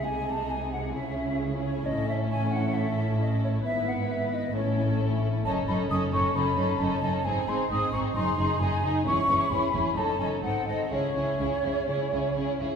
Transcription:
X:1
M:4/4
L:1/8
Q:1/4=132
K:C#m
V:1 name="Flute section"
g a g f e2 z c | d e g f e2 d c | e f e d c2 z2 | a b d' c' b2 a2 |
g ^b d' c' b2 g2 | c'2 b2 a g f d | c6- c z |]
V:2 name="Violin section"
G8 | A8 | B4 A4 | A A A A A A A A |
G G G G G G G G | G G G G A A A A | G G G G G G G G |]
V:3 name="Violin section"
D4 E4- | E8- | E4 E4 | D D D D D D D D |
D D D D D D D D | E E E E D D D D | E E E E E E E E |]
V:4 name="Viola section"
G,4 C4- | C8 | B,4 C4 | C C C C C C C C |
^B, B, B, B, D D D D | C C C C C C ^B, B, | C C C C C C C C |]
V:5 name="Cello section" clef=bass
^B,,4 C,4 | A,,8 | G,,4 A,,4 | F,, F,, F,, F,, F,, F,, F,, F,, |
G,, G,, G,, G,, F,, F,, F,, F,, | E,, E,, E,, E,, F,, F,, G,, G,, | C, C, C, C, C, C, C, C, |]
V:6 name="Double bass section" clef=bass
^B,,,4 C,,4 | A,,,8 | G,,,4 A,,,4 | F,,, F,,, F,,, F,,, F,,, F,,, F,,, F,,, |
G,,, G,,, G,,, G,,, F,,, F,,, F,,, F,,, | E,,, E,,, E,,, E,,, F,,, F,,, G,,, G,,, | C,, C,, C,, C,, C,, C,, C,, C,, |]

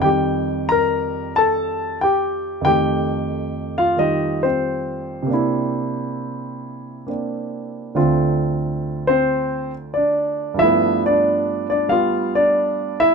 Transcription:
X:1
M:4/4
L:1/8
Q:"Swing" 1/4=92
K:F
V:1 name="Grand piano"
[Gg]2 [Bb]2 [Aa]2 [Gg]2 | [Gg]3 [Ff] [_E_e] [Cc]3- | [Cc]4- [Cc] z3 | z3 [Cc]2 z [Dd]2 |
[Ee] [Dd]2 [Dd] [Ff] [Dd]2 [Ee] |]
V:2 name="Grand piano"
[F,,_E,G,G]8 | [F,,_E,A,]4 [E,G,F]4 | [C,B,DE]4- [C,B,DE] [B,CD]3 | [D,,D,CF]8 |
[G,,F,A,=B,]4 [G,B,]4 |]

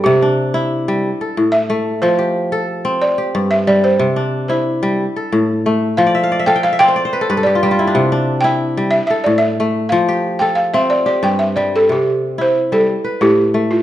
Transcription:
X:1
M:12/8
L:1/16
Q:3/8=122
K:C
V:1 name="Balafon"
G8- G2 z8 e6 | c8- c2 z2 d6 e2 d2 c2- | c6 c8- c2 z8 | f6 g2 f2 g8 d6- |
d4 z2 g6 e2 e2 d2 e6 | f6 g2 f2 e2 d2 d2 g2 e2 d2 A2 | G4 z2 c4 A6 G6 F2 |]
V:2 name="Kora"
z2 D6 z6 A6 z4 | z2 G6 z6 G6 z4 | z2 D6 z6 A6 z4 | z d e f d e f g f e d c d c B A B A G F G F E D- |
D z D6 z6 A6 z4 | z2 G6 z6 G6 z4 | z12 z2 B6 z4 |]
V:3 name="Kora" clef=bass
C,4 z2 E4 G,2 z4 A,,4 A,4 | F,4 z2 A4 C2 z4 G,,4 G,4 | C,4 z2 E4 G,2 z4 A,,4 A,4 | F,4 z2 A4 C2 z4 G,,4 G,4 |
C,4 z2 E4 G,2 z4 A,,4 A,4 | F,4 z2 A4 C2 z4 G,,4 G,4 | C,4 z2 E4 G,2 z4 A,,4 A,4 |]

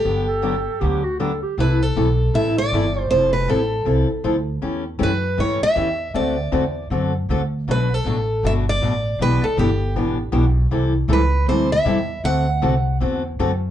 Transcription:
X:1
M:4/4
L:1/16
Q:"Swing" 1/4=158
K:Clyd
V:1 name="Steel-string acoustic guitar"
G12 z4 | B2 A6 e2 d6 | c2 B2 A4 z8 | z4 B4 ^c2 e6 |
d8 z8 | B2 A6 e2 d6 | B2 A2 G4 z8 | z4 B4 c2 e6 |
f8 z8 |]
V:2 name="Clarinet"
z2 A6 G2 F2 A2 G2 | z16 | z16 | z16 |
z16 | z16 | z16 | z16 |
z16 |]
V:3 name="Steel-string acoustic guitar"
[D,F,B,DG]2 z2 [D,F,B,DG] z3 [D,F,B,DG]2 z2 [D,F,B,DG] z3 | [C,E,A,EA]2 z2 [C,E,A,EA] z3 [C,E,A,EA]2 z2 [C,E,A,EA] z3 | [=F,CEA]2 z2 [F,CEA] z3 [F,CEA]2 z2 [F,CEA] z3 | [E,A,^CG]2 z2 [E,A,CG] z3 [E,A,CG]2 z2 [E,A,CG] z3 |
[D,A,CFA]2 z2 [D,A,CFA] z3 [D,A,CFA]2 z2 [D,A,CFA] z3 | [B,,F,A,DF]2 z2 [B,,F,A,DF] z3 [B,,F,A,DF]2 z2 [B,,F,A,DF] z3 | [B,,E,B,DG]2 z2 [B,,E,B,DG] z3 [B,,E,B,DG]2 z2 [B,,E,B,DG] z3 | [C,E,G,CEA]2 z2 [C,E,G,CEA] z3 [C,E,G,CEA]2 z2 [C,E,G,CEA] z3 |
[D,A,CFA]2 z2 [D,A,CFA] z3 [D,A,CFA]2 z2 [D,A,CFA] z3 |]
V:4 name="Upright bass" clef=bass
G,,,8 D,,8 | C,,4 B,,,4 A,,,4 G,,,4 | =F,,,4 A,,,4 C,,2 z2 D,,4 | E,,4 F,,4 G,,2 z2 E,,4 |
D,,4 E,,4 F,,4 D,,4 | B,,,4 A,,,4 G,,,4 A,,,4 | B,,,2 z2 G,,,4 A,,,4 B,,,4 | C,,4 ^C,,4 D,,4 E,,4 |
D,,4 C,,4 E,,4 F,,4 |]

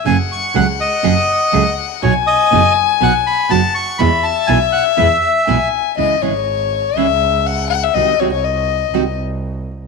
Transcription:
X:1
M:4/4
L:1/16
Q:1/4=122
K:E
V:1 name="Bandoneon"
g2 c'2 f2 d8 z2 | c2 d4 z2 f2 b2 a2 c'2 | b2 a2 g2 f2 e6 z2 | [K:C#m] z16 |
z16 |]
V:2 name="Violin"
f16 | g12 f4 | e12 g4 | [K:C#m] d2 c6 e4 f2 f e |
d2 c c d6 z6 |]
V:3 name="Nylon-string guitar" clef=bass
[C,F,A,CG]2 z2 [C,F,A,CG]2 z2 [C,F,A,CG]2 z2 [C,F,A,CG]2 z2 | [B,,F,B,DF]2 z2 [B,,F,B,DF]2 z2 [B,,F,B,DF]2 z2 [B,,F,B,DF]2 z2 | [B,,E,G,B,E]2 z2 [B,,E,G,B,E]2 z2 [B,,E,G,B,E]2 z2 [B,,E,G,B,E]2 z2 | [K:C#m] [C,E,G,CE]2 [C,E,G,CE]2 z4 [C,E,G,CE]2 z6 |
[^B,,D,G,^B,F]2 [B,,D,G,B,F]2 z4 [B,,D,G,B,F]2 z6 |]
V:4 name="Double bass" clef=bass
F,,,2 z2 C,,2 z2 F,,,2 z2 C,,2 z2 | B,,,2 z2 F,,,2 z2 B,,,2 z2 F,,,2 z2 | E,,2 z2 B,,,2 z2 E,,2 z2 B,,,2 z2 | [K:C#m] C,,2 G,,,6 C,,8 |
^B,,,2 B,,,6 B,,,8 |]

